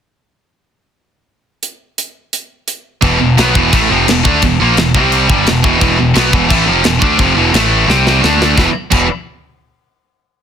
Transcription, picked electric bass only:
3.03 3.19 E1 medium
3.21 3.37 E1 medium
3.38 3.54 B1 loud
3.56 3.72 E1 loud
3.74 3.89 A1 loud
3.91 4.06 F1 medium
4.08 4.24 E1 medium
4.25 4.41 D2 loud
4.43 4.59 E1 medium
4.62 4.77 A#1 loud
4.79 4.94 E1 medium
4.95 5.27 C2 loud
5.30 5.46 G1 medium
5.49 5.64 E1 medium
5.64 5.80 E1 loud
5.82 5.98 E1 medium
6.00 6.16 E1 medium
6.16 6.32 B1 loud
6.34 6.50 E1 medium
6.51 6.67 A1 loud
6.69 6.84 F1 medium
6.85 7.01 E1 medium
7.02 7.18 D2 loud
7.19 7.36 F1 loud
7.36 7.52 E1 medium
7.53 7.86 A1 loud
7.88 8.20 C2 loud
8.24 8.56 D2 medium
8.58 8.67 E1 medium
8.92 9.08 E1 loud

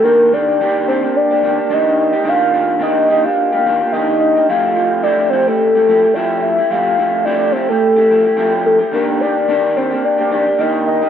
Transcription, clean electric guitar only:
0.03 0.31 D#3 medium
0.03 0.31 A#3 medium
0.03 0.32 D4 medium
0.03 0.32 G4 medium
0.32 0.59 D#3 medium
0.32 0.60 A#3 medium
0.32 0.60 D4 medium
0.32 0.60 G4 medium
0.60 0.86 D#3 medium
0.60 0.87 A#3 medium
0.60 0.88 D4 medium
0.60 0.88 G4 medium
0.87 1.03 D#3 medium
0.87 1.03 A#3 medium
0.87 1.03 D4 medium
0.87 1.02 G4 medium
1.03 1.31 A#3 soft
1.03 1.31 D4 soft
1.03 1.29 G4 medium
1.30 1.42 A#3 soft
1.30 1.43 D4 soft
1.30 1.43 G4 soft
1.42 1.58 D#3 medium
1.42 1.58 A#3 medium
1.42 1.57 D4 medium
1.42 1.56 G4 medium
1.58 1.69 A#3 soft
1.58 1.70 D4 soft
1.58 1.70 G4 soft
1.69 2.13 D#3 medium
1.69 2.13 A#3 medium
1.69 2.12 D4 medium
1.69 2.11 G4 medium
2.13 2.23 A#3 soft
2.13 2.24 D4 soft
2.13 2.24 G4 medium
2.24 2.51 D#3 medium
2.24 2.51 A#3 medium
2.24 2.52 D4 medium
2.24 2.53 G4 medium
2.52 2.78 D#3 soft
2.52 2.78 A#3 medium
2.52 2.79 D4 medium
2.52 2.80 G4 medium
2.79 3.07 D#3 medium
2.79 3.08 A#3 medium
2.79 3.08 D4 medium
2.79 3.09 G4 medium
3.08 3.24 D#3 medium
3.08 3.24 A#3 medium
3.08 3.23 D4 medium
3.08 3.23 G4 medium
3.24 3.53 A#3 soft
3.24 3.52 D4 soft
3.24 3.51 G4 medium
3.52 3.65 A#3 soft
3.52 3.65 D4 soft
3.52 3.65 G4 medium
3.65 3.81 D#3 medium
3.65 3.81 A#3 medium
3.65 3.80 D4 medium
3.65 3.79 G4 medium
3.80 3.92 A#3 soft
3.80 3.93 D4 soft
3.80 3.93 G4 soft
3.93 4.36 D#3 medium
3.93 4.36 A#3 medium
3.93 4.36 D4 medium
3.93 4.34 G4 medium
4.35 4.49 A#3 soft
4.35 4.49 D4 soft
4.35 4.48 G4 medium
4.49 4.74 F3 medium
4.49 4.75 A3 medium
4.49 4.75 E4 medium
4.49 4.77 G4 medium
4.76 5.02 F3 medium
4.76 5.02 A3 medium
4.76 5.03 E4 soft
4.76 5.03 G4 medium
5.03 5.30 F3 medium
5.03 5.30 A3 medium
5.03 5.32 E4 medium
5.03 5.32 G4 medium
5.32 5.47 F3 medium
5.32 5.47 A3 soft
5.32 5.47 E4 medium
5.32 5.46 G4 medium
5.47 5.75 A3 soft
5.47 5.75 E4 soft
5.47 5.74 G4 medium
5.75 5.87 A3 soft
5.75 5.88 E4 soft
5.75 5.88 G4 soft
5.87 6.03 F3 medium
5.87 6.04 A3 medium
5.87 6.02 E4 medium
5.87 6.01 G4 medium
6.02 6.14 A3 soft
6.02 6.15 E4 soft
6.02 6.15 G4 soft
6.15 6.58 F3 medium
6.15 6.59 A3 medium
6.15 6.58 E4 medium
6.15 6.57 G4 medium
6.58 6.70 A3 soft
6.58 6.70 E4 soft
6.58 6.71 G4 soft
6.70 6.96 F3 medium
6.70 6.97 A3 medium
6.70 6.97 E4 medium
6.70 6.98 G4 medium
6.97 7.24 F3 medium
6.97 7.25 A3 medium
6.97 7.26 E4 medium
6.97 7.26 G4 medium
7.26 7.52 F3 medium
7.26 7.54 A3 medium
7.26 7.54 E4 medium
7.26 7.55 G4 medium
7.54 7.69 F3 medium
7.54 7.70 A3 medium
7.54 7.69 E4 medium
7.54 7.68 G4 medium
7.69 7.97 A3 soft
7.69 7.96 E4 medium
7.69 7.95 G4 soft
7.96 8.09 A3 soft
7.96 8.10 E4 soft
7.96 8.09 G4 medium
8.10 8.25 F3 medium
8.10 8.25 A3 medium
8.10 8.24 E4 medium
8.10 8.23 G4 medium
8.25 8.36 A3 soft
8.25 8.36 E4 soft
8.25 8.37 G4 soft
8.37 8.80 F3 medium
8.37 8.80 A3 medium
8.37 8.80 E4 medium
8.37 8.78 G4 medium
8.79 8.92 A3 soft
8.79 8.93 E4 soft
8.79 8.92 G4 soft
8.91 9.19 D#3 medium
8.91 9.20 A#3 medium
8.91 9.20 D4 medium
8.91 9.21 G4 medium
9.20 9.47 D#3 soft
9.20 9.47 A#3 medium
9.20 9.48 D4 medium
9.20 9.49 G4 medium
9.48 9.74 D#3 medium
9.48 9.75 A#3 medium
9.48 9.75 D4 medium
9.48 9.76 G4 medium
9.75 9.91 D#3 medium
9.75 9.92 A#3 medium
9.75 9.91 D4 medium
9.75 9.90 G4 medium
9.91 10.20 A#3 soft
9.91 10.18 D4 medium
9.91 10.17 G4 medium
10.18 10.30 A#3 soft
10.18 10.31 D4 soft
10.18 10.31 G4 medium
10.30 10.47 D#3 medium
10.30 10.47 A#3 medium
10.30 10.47 D4 medium
10.30 10.45 G4 medium
10.46 10.58 A#3 soft
10.46 10.58 D4 soft
10.46 10.59 G4 soft
10.59 11.02 D#3 medium
10.59 11.02 A#3 medium
10.59 11.01 D4 medium
10.59 11.00 G4 medium
11.01 11.09 A#3 soft
11.01 11.09 D4 soft
11.01 11.09 G4 soft

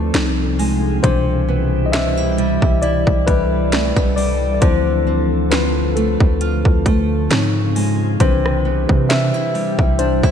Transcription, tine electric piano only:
0.00 0.10 A4 medium
0.00 0.16 B4 medium
0.14 1.00 F3 medium
0.14 1.00 C4 medium
0.14 1.00 D#4 medium
1.03 1.65 B2 medium
1.03 1.65 E3 medium
1.03 1.65 D4 medium
1.03 1.89 C5 loud
1.86 1.93 D#5 medium
1.92 2.78 E5 loud
2.82 3.28 D5 loud
3.27 4.13 B4 loud
4.16 4.53 D5 loud
4.54 4.61 D5 medium
4.61 5.92 F3 medium
4.61 5.92 C4 medium
4.61 5.93 E4 medium
4.61 5.54 C5 loud
5.51 5.93 B4 medium
5.96 7.26 A4 medium
7.31 8.16 F3 medium
7.31 8.17 C4 medium
7.31 8.17 D#4 medium
8.20 9.51 E3 medium
8.20 9.51 D4 medium
8.20 9.51 B4 medium
8.20 9.12 C5 loud
9.09 9.95 E5 loud
9.99 10.31 C5 loud

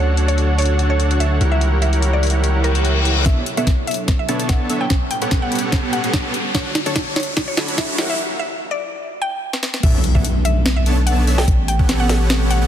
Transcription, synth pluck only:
0.00 0.14 C#5 medium
0.28 0.45 C#5 medium
0.58 0.76 C#5 medium
0.90 1.07 C#5 medium
1.20 1.37 E5 medium
1.52 1.68 E5 medium
1.82 1.99 E5 medium
2.13 2.24 D5 medium
2.64 3.18 A#4 medium
3.26 3.43 E5 medium
3.57 3.74 E5 medium
3.87 4.05 E5 medium
4.19 4.36 E5 medium
4.49 4.66 F#5 medium
4.81 4.97 G5 medium
5.11 5.28 G5 medium
5.42 5.53 F#5 medium
5.93 6.47 F#5 loud
6.54 6.72 C#5 loud
6.86 7.03 C#5 medium
7.16 7.33 C#5 medium
7.48 7.64 C#5 loud
7.78 7.95 E5 medium
8.10 8.26 E5 loud
8.39 8.57 E5 loud
8.71 8.82 D5 medium
9.22 9.76 G5 loud
9.83 10.00 E5 loud
10.15 10.32 E5 medium
10.45 10.62 E5 loud
10.76 10.93 E5 medium
11.06 11.24 F#5 medium
11.38 11.55 G5 medium
11.68 11.85 G5 medium
12.00 12.10 F#5 medium
12.51 12.67 F#5 loud

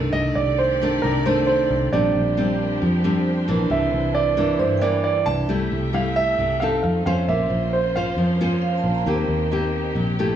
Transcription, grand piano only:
0.13 0.36 D#5 loud
0.35 0.59 D5 medium
0.58 1.05 C5 medium
1.02 1.26 A#4 medium
1.26 1.45 C5 medium
1.47 1.89 C5 medium
1.93 2.78 D5 medium
3.71 4.17 E5 medium
4.14 4.61 D5 loud
4.59 4.83 C5 medium
4.82 5.02 D5 medium
5.04 5.27 D5 medium
5.26 5.95 A5 loud
5.94 6.17 F5 medium
6.16 6.62 E5 loud
6.60 6.81 F5 medium
6.83 7.04 F5 medium
7.06 7.29 F5 medium
7.28 7.74 E5 medium
7.73 7.94 C5 medium
7.96 10.36 F5 loud

